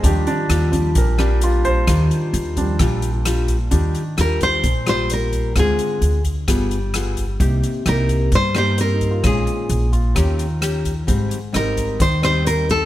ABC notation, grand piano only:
X:1
M:4/4
L:1/16
Q:1/4=130
K:Eb
V:1 name="Grand piano"
G2 D2 z4 B2 D2 F2 c2- | c2 z12 z2 | D12- D2 z2 | z16 |
z12 C E F2- | F4 z2 F4 z6 | z4 E12 |]
V:2 name="Grand piano" clef=bass
[F,G,D]6 [F,G,D]2 z8 | z6 [F,G,D]2 z8 | z16 | z16 |
z16 | z16 | z16 |]